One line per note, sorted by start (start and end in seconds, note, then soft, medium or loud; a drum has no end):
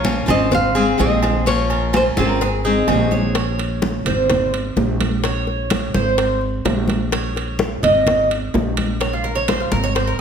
0.00 0.22 A#1 medium
0.00 0.27 F3 medium
0.00 0.27 A#4 medium
0.00 0.31 C#5 loud
0.05 0.28 A#3 medium
0.05 0.26 C#4 medium
0.05 0.25 F4 medium
0.05 cowbell medium
0.05 high conga loud
0.05 low timbale medium
0.05 low agogo medium
0.26 0.95 G#1 loud
0.26 0.51 A#3 medium
0.26 0.74 C4 medium
0.26 0.51 C#4 medium
0.26 0.50 F4 medium
0.26 cowbell medium
0.26 high conga soft
0.26 low conga medium
0.26 low agogo loud
0.30 0.51 D#5 loud
0.51 1.00 F5 loud
0.51 muted steel-string acoustic guitar stroke medium
0.51 cowbell loud
0.51 high conga soft
0.51 low conga medium
0.75 0.97 G#3 medium
0.75 0.98 C4 medium
0.75 0.98 G#4 medium
0.75 0.99 G#4 medium
0.75 high conga soft
0.75 low agogo medium
0.98 2.11 A#1 loud
0.98 1.45 D#3 medium
0.98 1.45 G#3 medium
0.98 1.46 C4 medium
0.98 1.45 C4 medium
0.98 1.46 G#4 medium
0.98 1.44 D#5 medium
0.98 cowbell medium
0.98 high conga medium
0.98 low timbale medium
0.98 low agogo medium
1.23 cowbell medium
1.23 high conga medium
1.23 low agogo loud
1.46 1.92 F3 medium
1.46 1.92 A#3 medium
1.46 1.70 C#4 medium
1.46 1.93 C#4 medium
1.46 1.94 F4 medium
1.46 1.91 C#5 medium
1.46 cowbell loud
1.46 high conga soft
1.70 2.16 A#4 medium
1.70 high conga soft
1.70 low agogo medium
1.93 2.16 F3 medium
1.93 2.16 A#3 medium
1.93 2.17 C#4 medium
1.93 2.16 F4 medium
1.93 2.02 C5 medium
1.93 cowbell medium
1.93 high conga loud
1.93 low timbale medium
1.93 low agogo loud
2.17 2.84 G#1 medium
2.17 2.41 A#3 medium
2.17 2.40 C4 medium
2.17 2.40 C#4 medium
2.17 2.40 F4 medium
2.17 3.09 A#4 medium
2.17 cowbell medium
2.17 high conga medium
2.41 2.64 G#4 medium
2.41 muted steel-string acoustic guitar stroke medium
2.41 cowbell loud
2.41 high conga soft
2.41 low agogo medium
2.64 2.87 G#3 medium
2.64 2.88 C4 medium
2.64 3.10 D#4 medium
2.64 2.87 G#4 medium
2.64 high conga soft
2.88 4.00 A#1 medium
2.88 3.34 D#3 medium
2.88 3.35 G#3 medium
2.88 3.35 C4 medium
2.88 3.35 G#4 medium
2.88 cowbell medium
2.88 high conga medium
2.88 low timbale medium
2.88 low agogo loud
3.11 3.34 C#5 medium
3.11 high conga medium
3.35 4.02 C#5 medium
3.35 high bongo medium
3.35 high conga soft
3.35 high timbale medium
3.59 high bongo soft
3.59 high conga soft
3.59 high timbale medium
3.82 high bongo medium
3.82 high conga loud
3.82 low timbale medium
4.05 4.73 G#1 medium
4.05 4.50 C5 medium
4.05 high bongo soft
4.05 high conga soft
4.05 low conga medium
4.05 high timbale medium
4.30 high bongo medium
4.30 high conga soft
4.30 low conga medium
4.30 high timbale medium
4.53 high conga soft
4.53 high timbale medium
4.76 5.88 A#1 medium
4.76 high bongo soft
4.76 low bongo medium
4.76 high conga medium
4.76 low timbale medium
5.01 high bongo soft
5.01 high conga medium
5.01 high timbale medium
5.23 5.91 C#5 medium
5.23 high bongo medium
5.23 high conga soft
5.23 high timbale medium
5.47 high bongo soft
5.47 high conga soft
5.70 high bongo medium
5.70 high conga loud
5.70 high timbale loud
5.70 low timbale medium
5.94 6.61 G#1 medium
5.94 6.38 C5 medium
5.94 high bongo soft
5.94 high conga medium
6.18 high bongo medium
6.18 high conga soft
6.18 high timbale medium
6.41 high conga soft
6.65 7.77 A#1 loud
6.65 high bongo soft
6.65 low bongo medium
6.65 high conga medium
6.65 high timbale medium
6.65 low timbale medium
6.88 high bongo soft
6.88 high conga medium
6.88 high timbale medium
7.11 7.79 C#5 medium
7.11 high bongo medium
7.11 high conga soft
7.11 high timbale medium
7.35 high bongo soft
7.35 high conga soft
7.35 high timbale medium
7.59 high bongo medium
7.59 high conga loud
7.59 low timbale medium
7.83 8.50 G#1 medium
7.83 8.27 D#5 medium
7.83 high bongo soft
7.83 high conga soft
7.83 low conga medium
7.83 high timbale loud
8.06 high bongo medium
8.06 high conga soft
8.06 low conga medium
8.06 high timbale medium
8.31 high conga soft
8.31 high timbale medium
8.54 9.66 A#1 medium
8.54 high bongo soft
8.54 low bongo medium
8.54 high conga medium
8.54 low timbale medium
8.77 high bongo soft
8.77 high conga medium
8.77 high timbale medium
9.00 9.12 C#5 medium
9.00 high bongo medium
9.00 high conga soft
9.00 high timbale medium
9.13 9.25 F4 medium
9.24 9.36 A#4 medium
9.24 high bongo soft
9.24 high conga soft
9.35 9.48 C#5 loud
9.48 9.60 C5 medium
9.48 high bongo medium
9.48 high conga medium
9.48 high timbale medium
9.48 low timbale medium
9.60 9.72 F4 medium
9.72 10.16 G#1 medium
9.72 9.83 A#4 medium
9.72 high bongo soft
9.72 high conga medium
9.84 9.95 C#5 loud
9.95 10.07 C5 medium
9.95 high bongo medium
9.95 high conga soft
9.95 high timbale medium
10.07 10.18 A#4 medium